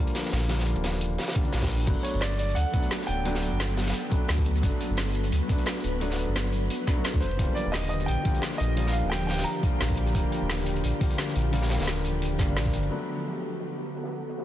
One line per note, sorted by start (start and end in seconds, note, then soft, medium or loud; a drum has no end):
0.00 0.48 D3 medium
0.00 0.49 F3 medium
0.00 0.50 G3 medium
0.00 0.50 A#3 medium
0.07 closed hi-hat soft
0.15 snare loud
0.15 closed hi-hat medium
0.24 snare soft
0.24 closed hi-hat soft
0.32 0.75 A#1 loud
0.32 snare loud
0.32 closed hi-hat medium
0.32 open hi-hat medium
0.48 0.58 D3 medium
0.48 0.58 F3 medium
0.48 0.59 G3 medium
0.48 0.59 A#3 medium
0.48 snare medium
0.48 closed hi-hat medium
0.48 open hi-hat medium
0.59 snare medium
0.67 closed hi-hat medium
0.76 1.17 D#1 loud
0.76 closed hi-hat soft
0.84 snare loud
0.84 closed hi-hat medium
1.01 closed hi-hat medium
1.19 snare medium
1.19 closed hi-hat medium
1.19 open hi-hat medium
1.28 snare loud
1.28 open hi-hat medium
1.35 1.41 D3 medium
1.35 1.43 F3 medium
1.35 1.43 G3 medium
1.35 1.43 A#3 medium
1.35 kick medium
1.35 closed hi-hat medium
1.43 1.85 D3 medium
1.43 1.85 F3 medium
1.43 1.86 G3 medium
1.43 closed hi-hat soft
1.47 1.87 D4 medium
1.53 1.86 A#1 medium
1.53 snare loud
1.53 closed hi-hat medium
1.53 open hi-hat medium
1.62 kick medium
1.62 snare loud
1.62 closed hi-hat soft
1.62 open hi-hat medium
1.70 closed hi-hat medium
1.79 closed hi-hat soft
1.85 1.96 G1 medium
1.85 2.70 F#3 medium
1.85 7.18 F#3 medium
1.85 2.71 A3 medium
1.85 7.18 B3 medium
1.85 2.72 B3 medium
1.85 4.61 A4 medium
1.85 kick loud
1.85 closed hi-hat medium
1.85 crash medium
1.90 2.73 D4 medium
2.03 2.22 C#5 medium
2.03 closed hi-hat medium
2.14 2.55 G1 loud
2.20 2.36 D5 medium
2.20 snare loud
2.20 closed hi-hat medium
2.20 open hi-hat medium
2.38 2.54 D5 medium
2.38 closed hi-hat medium
2.49 closed hi-hat soft
2.55 2.65 D2 loud
2.55 3.09 F#5 medium
2.55 closed hi-hat medium
2.72 3.23 F#3 medium
2.72 3.23 A3 medium
2.72 3.24 B3 medium
2.72 kick loud
2.72 closed hi-hat medium
2.76 3.25 D4 medium
2.82 closed hi-hat soft
2.91 snare loud
2.91 closed hi-hat medium
3.00 snare soft
3.00 closed hi-hat soft
3.07 3.50 D1 loud
3.07 3.73 G5 medium
3.07 closed hi-hat medium
3.24 3.34 F#3 medium
3.24 3.34 A3 medium
3.24 3.35 B3 medium
3.24 3.35 D4 loud
3.24 closed hi-hat medium
3.35 snare medium
3.43 closed hi-hat medium
3.52 3.93 G1 loud
3.60 snare loud
3.60 closed hi-hat medium
3.77 snare medium
3.77 closed hi-hat medium
3.77 open hi-hat medium
3.86 snare medium
3.86 open hi-hat medium
3.90 snare medium
3.90 open hi-hat medium
3.94 closed hi-hat medium
4.10 4.60 F#3 medium
4.10 4.61 A3 medium
4.10 4.62 B3 medium
4.10 kick loud
4.10 closed hi-hat medium
4.14 4.62 D4 medium
4.29 4.62 D2 medium
4.29 snare loud
4.29 closed hi-hat medium
4.29 open hi-hat medium
4.38 kick medium
4.38 closed hi-hat soft
4.46 closed hi-hat medium
4.56 closed hi-hat soft
4.61 4.72 G1 medium
4.61 5.46 F#3 medium
4.61 5.47 A3 medium
4.61 5.48 B3 medium
4.61 7.19 B4 medium
4.61 kick loud
4.61 closed hi-hat medium
4.65 5.49 D4 medium
4.81 closed hi-hat medium
4.90 5.31 G1 loud
4.97 snare medium
4.97 snare loud
4.97 closed hi-hat medium
4.97 open hi-hat medium
5.15 closed hi-hat medium
5.24 closed hi-hat soft
5.32 5.41 D2 loud
5.32 closed hi-hat medium
5.47 5.98 F#3 medium
5.47 5.99 A3 medium
5.47 6.00 B3 medium
5.47 kick loud
5.47 closed hi-hat medium
5.51 6.00 D4 medium
5.58 closed hi-hat soft
5.66 snare loud
5.66 closed hi-hat medium
5.76 snare soft
5.76 closed hi-hat soft
5.84 6.26 D1 loud
5.84 closed hi-hat medium
6.00 6.10 F#3 medium
6.00 6.10 A3 medium
6.00 6.10 B3 medium
6.00 6.11 D4 medium
6.00 closed hi-hat medium
6.10 snare medium
6.19 closed hi-hat medium
6.28 6.69 G1 loud
6.36 snare loud
6.36 closed hi-hat medium
6.52 closed hi-hat medium
6.70 closed hi-hat medium
6.86 6.94 F#3 medium
6.86 6.94 A3 medium
6.86 6.95 B3 medium
6.86 6.95 D4 medium
6.86 kick loud
6.86 snare soft
6.86 closed hi-hat medium
6.96 7.21 F#3 medium
6.96 7.21 A3 medium
6.96 7.21 B3 medium
6.96 7.22 F#4 medium
7.04 snare loud
7.04 closed hi-hat medium
7.14 7.24 D2 medium
7.14 kick medium
7.14 snare soft
7.14 closed hi-hat soft
7.20 7.33 D#1 loud
7.20 12.87 D3 medium
7.20 12.87 F3 medium
7.20 12.87 G4 medium
7.20 7.57 C5 medium
7.20 closed hi-hat medium
7.31 7.38 G1 loud
7.31 closed hi-hat soft
7.37 7.48 D#1 medium
7.37 8.22 D3 medium
7.37 8.23 F3 medium
7.37 8.24 G3 medium
7.37 8.24 A#3 medium
7.37 kick loud
7.37 closed hi-hat medium
7.55 7.72 D5 medium
7.55 closed hi-hat medium
7.66 8.07 D#1 loud
7.72 7.88 D#5 medium
7.72 snare loud
7.72 closed hi-hat medium
7.72 open hi-hat medium
7.89 8.08 D#5 medium
7.89 closed hi-hat medium
8.00 closed hi-hat soft
8.06 8.17 A#1 medium
8.06 8.61 G5 medium
8.06 closed hi-hat medium
8.23 8.74 D3 medium
8.23 8.75 F3 medium
8.23 8.76 G3 medium
8.23 kick loud
8.23 closed hi-hat medium
8.27 8.76 A#3 medium
8.35 closed hi-hat soft
8.42 snare loud
8.42 closed hi-hat medium
8.52 snare soft
8.52 closed hi-hat soft
8.58 9.02 A#1 loud
8.58 8.95 D#5 medium
8.58 closed hi-hat medium
8.76 8.86 D3 medium
8.76 8.86 F3 medium
8.76 8.86 G3 medium
8.76 8.87 A#3 medium
8.76 closed hi-hat medium
8.86 snare medium
8.92 9.11 F5 medium
8.92 closed hi-hat medium
9.04 9.45 D#1 loud
9.10 9.25 G5 loud
9.10 snare loud
9.10 closed hi-hat medium
9.27 9.46 G5 medium
9.27 snare loud
9.27 closed hi-hat medium
9.27 open hi-hat medium
9.38 snare medium
9.38 open hi-hat medium
9.42 9.93 A#5 medium
9.42 snare medium
9.42 open hi-hat medium
9.46 closed hi-hat medium
9.61 10.12 D3 medium
9.61 10.13 F3 medium
9.61 10.13 G3 medium
9.61 kick loud
9.61 closed hi-hat medium
9.65 10.14 A#3 medium
9.80 10.14 A#1 loud
9.80 snare loud
9.80 closed hi-hat medium
9.80 open hi-hat medium
9.90 kick medium
9.90 closed hi-hat soft
9.97 closed hi-hat medium
10.06 closed hi-hat soft
10.13 10.23 D#1 loud
10.13 10.98 D3 medium
10.13 10.99 F3 medium
10.13 11.00 G3 medium
10.13 kick loud
10.13 closed hi-hat medium
10.17 11.00 A#3 medium
10.32 closed hi-hat medium
10.42 10.83 D#1 loud
10.49 snare loud
10.49 closed hi-hat medium
10.49 open hi-hat medium
10.66 closed hi-hat medium
10.76 closed hi-hat soft
10.84 10.92 A#1 loud
10.84 closed hi-hat medium
10.99 11.50 D3 medium
10.99 11.51 F3 medium
10.99 11.51 G3 medium
10.99 kick medium
10.99 closed hi-hat medium
11.03 11.52 A#3 medium
11.10 closed hi-hat soft
11.18 snare loud
11.18 closed hi-hat medium
11.28 snare soft
11.28 closed hi-hat soft
11.36 11.78 A#1 loud
11.36 closed hi-hat medium
11.52 11.62 D3 medium
11.52 11.62 F3 medium
11.52 11.62 G3 medium
11.52 11.63 A#3 loud
11.52 closed hi-hat medium
11.62 snare medium
11.70 snare loud
11.70 closed hi-hat medium
11.70 open hi-hat medium
11.79 12.41 D#1 loud
11.79 snare medium
11.79 closed hi-hat soft
11.79 open hi-hat medium
11.83 snare medium
11.83 open hi-hat medium
11.87 snare loud
11.87 closed hi-hat medium
12.05 closed hi-hat medium
12.22 closed hi-hat medium
12.38 12.58 G1 medium
12.38 12.45 D3 medium
12.38 12.46 F3 medium
12.38 12.46 G3 medium
12.38 12.47 A#3 medium
12.38 kick loud
12.38 snare soft
12.38 closed hi-hat medium
12.46 12.88 D3 medium
12.46 12.89 F3 medium
12.46 12.89 G3 medium
12.46 closed hi-hat soft
12.50 12.90 D4 medium
12.57 12.75 A#1 medium
12.57 snare loud
12.57 closed hi-hat medium
12.66 kick medium
12.66 snare soft
12.66 closed hi-hat soft
12.73 12.89 G1 medium
12.73 closed hi-hat medium
12.83 closed hi-hat soft
12.89 14.45 F#3 medium
12.89 14.45 A3 medium
12.89 14.45 B3 medium
12.89 14.45 F#4 medium
12.89 14.45 A4 medium
12.89 closed hi-hat medium
12.93 14.45 D4 medium
13.08 closed hi-hat medium
13.26 open hi-hat medium
13.43 closed hi-hat medium
13.52 closed hi-hat soft
13.60 closed hi-hat medium
13.78 closed hi-hat medium
13.86 closed hi-hat soft
13.95 closed hi-hat medium
14.04 snare soft
14.11 closed hi-hat medium
14.29 closed hi-hat medium
14.38 snare soft